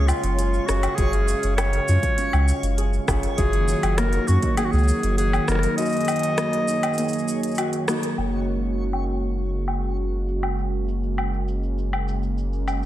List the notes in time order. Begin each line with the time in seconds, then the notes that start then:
Already playing: C#2 F#2 C#3 G#3 A#3 C#4 F4 C#5 F5
0.07 F4, cabasa, low woodblock
0.23 F#1, closed hi-hat, cabasa
0.38 G#4, closed hi-hat, cabasa
0.54 cabasa
0.66 F#1 C#4 F#4 G#4, cross-stick, cabasa
0.83 closed hi-hat, cabasa, low woodblock
0.95 F#1 F#2 G#4, kick, closed hi-hat, cabasa
1.13 closed hi-hat, cabasa
1.28 cabasa
1.43 F#1, closed hi-hat, cabasa
1.56 C#4 C#5, cross-stick, closed hi-hat, cabasa, low woodblock
1.73 closed hi-hat, cabasa
1.88 F#2 F4, cabasa
2.03 kick, closed hi-hat, cabasa
2.18 C#4, closed hi-hat, cabasa
2.33 C#2, cabasa, low woodblock
2.48 cabasa
2.63 F#1, closed hi-hat, cabasa
2.78 G#4, closed hi-hat, cabasa
2.93 cabasa
3.08 F#1 C#4 F4 G#4, kick, cross-stick, cabasa, low woodblock
3.23 closed hi-hat, cabasa
3.37 F#1 F#2 D#3 F#3 A#3 F#4 G#4, kick, closed hi-hat, cabasa
3.53 closed hi-hat, cabasa
3.68 cabasa
3.83 F#1, closed hi-hat, cabasa, low woodblock
3.97 A#3 A#4, cross-stick, closed hi-hat, cabasa
4.13 closed hi-hat, cabasa
4.27 F#2 C#4 F#4, cabasa
4.42 D#4, kick, closed hi-hat, cabasa
4.57 A#3 G#4, closed hi-hat, cabasa, low woodblock
4.65 F#4
4.71 C#2 G#4, cabasa
4.78 cabasa
4.83 cabasa
4.88 cabasa
4.99 cabasa
5.03 F#1, closed hi-hat, cabasa
5.17 F#4 G#4, closed hi-hat, cabasa
5.33 cabasa, low woodblock
5.48 F#1 A#3 D#4 F#4 A#4, cross-stick, cabasa
5.52 cross-stick
5.55 cross-stick
5.59 cross-stick
5.63 closed hi-hat, cabasa
5.77 F#2 G#4 D#5, closed hi-hat, cabasa
5.82 cabasa
5.86 cabasa
5.89 closed hi-hat, cabasa
5.93 closed hi-hat, cabasa
5.97 closed hi-hat, cabasa
6.01 closed hi-hat, cabasa
6.05 closed hi-hat, cabasa, low woodblock
6.08 closed hi-hat, cabasa
6.16 closed hi-hat
6.19 closed hi-hat
6.23 closed hi-hat, cabasa
6.38 A#3, cross-stick, closed hi-hat, cabasa
6.53 closed hi-hat, cabasa
6.68 D#4, cabasa
6.83 closed hi-hat, cabasa, low woodblock
6.93 cabasa
6.98 A#3, closed hi-hat, cabasa
7.03 cabasa
7.08 cabasa
7.13 closed hi-hat, cabasa
7.19 cabasa
7.28 cabasa
7.43 closed hi-hat, cabasa
7.48 cabasa
7.51 cabasa
7.55 F#4, closed hi-hat, cabasa, low woodblock
7.58 cabasa
7.73 closed hi-hat, cabasa
7.88 A#3 D#4 F#4, cross-stick, cabasa
8.03 closed hi-hat, cabasa
8.17 F#1 C#3 G#3 A#3 F#4, cabasa, low woodblock
8.33 cabasa
8.48 cabasa
8.63 cabasa
8.78 cabasa
8.93 cabasa, low woodblock
9.08 cabasa
9.23 cabasa
9.38 cabasa
9.53 cabasa
9.68 cabasa, low woodblock
9.83 cabasa
9.98 cabasa
10.13 cabasa
10.28 cabasa
10.43 cabasa, low woodblock
10.58 cabasa
10.74 cabasa
10.88 cabasa
11.03 cabasa
11.18 cabasa, low woodblock
11.33 cabasa
11.48 cabasa
11.63 cabasa
11.78 cabasa
11.93 cabasa, low woodblock
12.08 cabasa
12.23 cabasa
12.38 cabasa
12.53 cabasa
12.68 cabasa, low woodblock